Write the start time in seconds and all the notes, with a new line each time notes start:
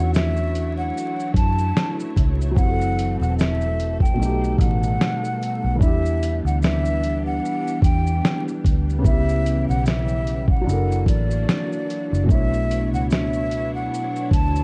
Already playing: E2 E3 F#3 A3 C#4 D4 E4 F#4 C#5 F#5
0.14 E5, snare, shaker
0.37 shaker
0.55 closed hi-hat, shaker
0.78 F#5
0.98 shaker
1.20 shaker
1.34 F#2 A5, kick, closed hi-hat, shaker
1.58 shaker
1.77 snare, shaker
2.00 shaker
2.17 C#2, kick, closed hi-hat, shaker
2.41 shaker
2.51 F#3 C4
2.56 F#1 E3 C4 E4 A4 F#5, kick, shaker
2.62 G4
2.68 A4
2.81 shaker
2.99 closed hi-hat, shaker
3.21 E1 F#5, shaker
3.38 E5, snare, shaker
3.61 shaker
3.80 closed hi-hat, shaker
4.00 G5, kick
4.05 shaker
4.14 B2 A3
4.19 B1 D#3 G3 A3 B3 D#4, shaker
4.25 G4
4.44 shaker
4.58 A1 F#5, kick, closed hi-hat, shaker
4.83 shaker
5.01 snare, shaker
5.25 shaker
5.43 closed hi-hat, shaker
5.64 B1
5.76 E3 D4
5.81 E2 E3 D4 E4 G4 E5, kick, shaker
5.86 G4
6.06 shaker
6.23 closed hi-hat, shaker
6.45 D2 F#5, shaker
6.62 E5, snare, shaker
6.85 shaker
7.03 closed hi-hat, shaker
7.26 F#5
7.45 shaker
7.68 shaker
7.82 E2 G5, kick, closed hi-hat, shaker
8.07 shaker
8.25 snare, shaker
8.48 shaker
8.65 D2, kick, closed hi-hat, shaker
8.90 shaker
8.98 C#3 B3
9.04 C#2 E3 C#4 E4 G4 E5, kick, shaker
9.09 G4
9.29 shaker
9.46 closed hi-hat, shaker
9.69 B1 F#5, shaker
9.86 E5, snare, shaker
10.08 shaker
10.27 closed hi-hat, shaker
10.48 F#5, kick
10.61 F#3 D4
10.66 F#1 E3 F#3 A#3 D4 E4 F#4 A4, shaker
10.72 A#4
10.92 shaker
11.06 A1 D5, kick, closed hi-hat, shaker
11.31 shaker
11.49 snare, shaker
11.72 shaker
11.90 closed hi-hat, shaker
12.13 F#1, shaker
12.24 B2 A3
12.29 B1 B3 D4 E4 C#5 E5, kick, shaker
12.34 C#5
12.54 shaker
12.71 closed hi-hat, shaker
12.94 C#2 F#5, shaker
13.10 E5, snare, shaker
13.33 shaker
13.51 closed hi-hat, shaker
13.75 F#5
13.94 shaker
14.16 shaker
14.31 D2 A5, kick, closed hi-hat, shaker
14.56 shaker